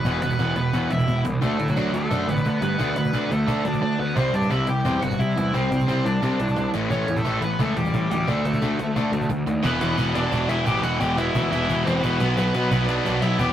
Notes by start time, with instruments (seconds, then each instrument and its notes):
Already playing: lead electric guitar B3 B4
0.05 picked electric bass E1, overdriven electric guitar E2 B2 E3, cajon bass
0.22 picked electric bass E1, overdriven electric guitar E2 B2, lead electric guitar B3 B4, cajon slap
0.30 cajon bass
0.39 picked electric bass E1, overdriven electric guitar E2 B2 E3, cajon bass
0.56 picked electric bass E1, overdriven electric guitar E2 B2, lead electric guitar B3 B4, cajon slap
0.73 picked electric bass E2, overdriven electric guitar E2 B2 E3, cajon bass
0.90 picked electric bass E1, overdriven electric guitar E2 B2, lead electric guitar E4 E5, cajon slap
0.99 cajon bass
1.07 picked electric bass E1, overdriven electric guitar E2 B2, cajon bass
1.24 picked electric bass C2, overdriven electric guitar E2 B2, cajon slap
1.41 picked electric bass D2, overdriven electric guitar D3 A3 D4, lead electric guitar A3 A4, cajon bass
1.59 picked electric bass A2, overdriven electric guitar D3 A3, cajon slap
1.68 lead electric guitar F#3 F#4, cajon bass
1.76 picked electric bass D2, overdriven electric guitar D3 A3 D4, cajon bass
1.93 picked electric bass D2, overdriven electric guitar D3 A3, lead electric guitar A3 A4, cajon slap
2.10 picked electric bass F#2, overdriven electric guitar D3 A3 D4, cajon bass
2.28 picked electric bass A1, overdriven electric guitar D3 A3, lead electric guitar B3 B4, cajon slap
2.37 cajon bass
2.45 picked electric bass D3, overdriven electric guitar D3 A3, cajon bass
2.61 picked electric bass G2, overdriven electric guitar D3 A3, lead electric guitar B3 B4, cajon slap
2.79 picked electric bass D2, overdriven electric guitar D3 A3 D4, cajon bass
2.96 picked electric bass D2, overdriven electric guitar D3 A3, lead electric guitar B3 B4, cajon slap
3.05 cajon bass
3.13 picked electric bass D2, overdriven electric guitar D3 A3 D4, cajon bass
3.30 picked electric bass D2, overdriven electric guitar D3 A3, lead electric guitar A3 A4, cajon slap
3.47 overdriven electric guitar D3 A3 D4, picked electric bass D3, cajon bass
3.65 picked electric bass D2, overdriven electric guitar D3 A3, lead electric guitar D4 D5, cajon slap
3.73 cajon bass
3.81 picked electric bass D2, overdriven electric guitar D3 A3, lead electric guitar D4 D5
3.99 picked electric bass D2, overdriven electric guitar D3 A3, lead electric guitar B3 B4
4.16 picked electric bass C2, overdriven electric guitar C3 G3 C4, lead electric guitar C4 C5, cajon bass
4.33 picked electric bass G2, overdriven electric guitar C3 G3, lead electric guitar D4 D5, cajon slap
4.42 cajon bass
4.50 picked electric bass C2, overdriven electric guitar C3 G3 C4, lead electric guitar E4 E5, cajon bass
4.67 picked electric bass C2, overdriven electric guitar C3 G3, lead electric guitar G4 G5, cajon slap
4.85 picked electric bass E2, overdriven electric guitar C3 G3 C4, cajon bass
5.01 picked electric bass G1, overdriven electric guitar C3 G3, lead electric guitar F#4 F#5, cajon slap
5.11 cajon bass
5.19 overdriven electric guitar C3 G3, picked electric bass C3, lead electric guitar E4 E5, cajon bass
5.36 picked electric bass E2, overdriven electric guitar C3 G3, cajon slap
5.53 picked electric bass C2, overdriven electric guitar C3 G3 C4, lead electric guitar C4 C5, cajon bass
5.71 picked electric bass C2, overdriven electric guitar C3 G3, cajon slap
5.80 cajon bass
5.87 picked electric bass C2, overdriven electric guitar C3 G3 C4, lead electric guitar C4 C5, cajon bass
6.05 picked electric bass C2, overdriven electric guitar C3 G3, lead electric guitar D4 D5, cajon slap
6.22 overdriven electric guitar C3 G3 C4, picked electric bass C3, cajon bass
6.40 picked electric bass C2, overdriven electric guitar C3 G3, cajon slap
6.48 cajon bass
6.56 picked electric bass C2, overdriven electric guitar C3 G3, cajon bass
6.74 picked electric bass A1, overdriven electric guitar A2 E3 A3, cajon slap
6.89 picked electric bass A1, overdriven electric guitar A2 E3 A3, lead electric guitar C#4 C#5, cajon bass
7.08 picked electric bass E2, overdriven electric guitar A2 E3, cajon slap
7.16 lead electric guitar A3 A4, cajon bass
7.24 picked electric bass A1, overdriven electric guitar A2 E3 A3, cajon bass
7.42 picked electric bass A1, overdriven electric guitar A2 E3, lead electric guitar B3 B4, cajon slap
7.59 picked electric bass C#2, overdriven electric guitar A2 E3 A3, lead electric guitar A3 A4, cajon bass
7.77 picked electric bass E1, overdriven electric guitar A2 E3, lead electric guitar G3 G4, cajon slap
7.85 cajon bass
7.93 picked electric bass A2, overdriven electric guitar A2 E3, cajon bass
8.10 picked electric bass D2, overdriven electric guitar A2 E3, lead electric guitar G3 G4, cajon slap
8.27 picked electric bass D2, overdriven electric guitar D3 A3 D4, lead electric guitar A3 A4, cajon bass
8.44 picked electric bass D2, overdriven electric guitar D3 A3, cajon slap
8.53 cajon bass
8.62 picked electric bass D2, overdriven electric guitar D3 A3 D4, cajon bass
8.79 picked electric bass D2, overdriven electric guitar D3 A3, cajon slap
8.96 overdriven electric guitar D3 A3 D4, picked electric bass D3, cajon bass
9.12 picked electric bass D2, overdriven electric guitar D3 A3, cajon slap
9.21 cajon bass
9.30 picked electric bass D2, overdriven electric guitar D3 A3, cajon bass, cajon slap
9.47 picked electric bass D#2, overdriven electric guitar D3 A3, cajon slap
9.64 picked electric bass E1, overdriven electric guitar E2 B2 E3, lead electric guitar B3 B4, cajon bass
9.80 picked electric bass E2, overdriven electric guitar E2 B2 E3, lead electric guitar B3 B4, cajon slap
9.97 picked electric bass E1, overdriven electric guitar E2 B2 E3, cajon bass
10.14 overdriven electric guitar E2 B2 E3, lead electric guitar D4 D5, cajon slap
10.32 picked electric bass E1, overdriven electric guitar E2 B2 E3, cajon bass
10.48 picked electric bass E1, overdriven electric guitar E2 B2 E3, lead electric guitar E4 E5, cajon slap
10.65 picked electric bass A1, overdriven electric guitar E2 B2 E3, lead electric guitar G4 G5, cajon bass
10.82 picked electric bass E1, overdriven electric guitar E2 B2 E3, lead electric guitar F#4 F#5, cajon slap
10.99 picked electric bass E1, overdriven electric guitar E2 B2 E3, lead electric guitar G4 G5, cajon bass
11.17 overdriven electric guitar E2 B2 E3, lead electric guitar E4 E5, cajon slap
11.35 picked electric bass D2, overdriven electric guitar E2 B2 E3, cajon bass
11.52 picked electric bass E1, overdriven electric guitar E2 B2 E3, lead electric guitar E4 E5, cajon slap
11.69 picked electric bass E1, overdriven electric guitar E2 B2 E3, cajon bass
11.84 picked electric bass E1, overdriven electric guitar E2 B2 E3, lead electric guitar C4 C5, cajon slap
12.01 picked electric bass E1, overdriven electric guitar E2 B2 E3, lead electric guitar B3 B4, cajon bass
12.20 picked electric bass B1, overdriven electric guitar B2 F#3 B3, cajon slap
12.36 picked electric bass B1, overdriven electric guitar B2 F#3 B3, lead electric guitar B3 B4, cajon bass
12.53 overdriven electric guitar B2 F#3 B3, picked electric bass B2, lead electric guitar B3 B4, cajon slap
12.71 picked electric bass B1, overdriven electric guitar B2 F#3 B3, cajon bass
12.86 overdriven electric guitar B2 F#3 B3, lead electric guitar D4 D5, cajon slap
13.05 picked electric bass B1, overdriven electric guitar B2 F#3 B3, cajon bass
13.21 picked electric bass B1, overdriven electric guitar B2 F#3 B3, lead electric guitar E4 E5, cajon slap
13.38 picked electric bass E2, overdriven electric guitar B2 F#3 B3, lead electric guitar G4 G5, cajon bass